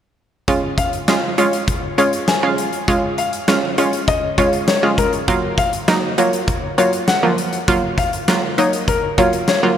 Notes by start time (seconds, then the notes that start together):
0.48 G#3 C#4 F4, kick, closed hi-hat
0.78 F5, kick, closed hi-hat
0.93 closed hi-hat
1.08 G#3 C#4 F4, snare, closed hi-hat
1.38 G#3 C#4 F4 C#5, closed hi-hat
1.53 closed hi-hat
1.68 kick, closed hi-hat
1.98 G#3 C#4 F4 C#5, closed hi-hat
2.13 closed hi-hat
2.28 G#5, snare, closed hi-hat
2.43 G#3 C#4 F4
2.58 closed hi-hat
2.73 closed hi-hat
2.88 G#3 C#4 F4, kick, closed hi-hat
3.18 F5, closed hi-hat
3.33 closed hi-hat
3.48 G#3 C#4 F4, snare, closed hi-hat
3.78 G#3 C#4 F4 C#5, closed hi-hat
3.93 closed hi-hat
4.08 D#5, kick, closed hi-hat
4.38 G#3 C#4 F4 C#5, kick, closed hi-hat
4.53 closed hi-hat
4.68 C#5, snare, closed hi-hat
4.83 G#3 C#4 F4
4.98 A#4, kick, closed hi-hat
5.13 closed hi-hat
5.28 F#3 A#3 F4, kick, closed hi-hat
5.58 F5, kick, closed hi-hat
5.73 closed hi-hat
5.88 F#3 A#3 D#4, snare, closed hi-hat
6.18 F#3 A#3 F4 C#5, closed hi-hat
6.33 closed hi-hat
6.48 kick, closed hi-hat
6.78 F#3 A#3 F4 C#5, closed hi-hat
6.93 closed hi-hat
7.08 F#5, snare, closed hi-hat
7.23 F3 F#3 A#3
7.38 closed hi-hat
7.53 closed hi-hat
7.68 F#3 A#3 F4, kick, closed hi-hat
7.98 F5, kick, closed hi-hat
8.13 closed hi-hat
8.28 F#3 A#3 F4, snare, closed hi-hat
8.58 F#3 A#3 D#4 C#5, closed hi-hat
8.73 closed hi-hat
8.88 A#4, kick, closed hi-hat
9.18 F#3 A#3 F4 C#5, kick, closed hi-hat
9.33 closed hi-hat
9.48 C#5, snare, closed hi-hat
9.63 F#3 A#3 F4